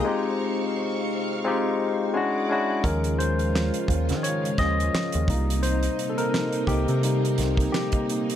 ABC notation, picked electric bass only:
X:1
M:4/4
L:1/16
Q:"Swing 16ths" 1/4=86
K:Ebmix
V:1 name="Picked electric bass" clef=bass
z16 | E,,4- E,, z E,, E,3 E,,2 z E,, C,,2- | C,,2 z4 C,, C,3 C,,2 z4 |]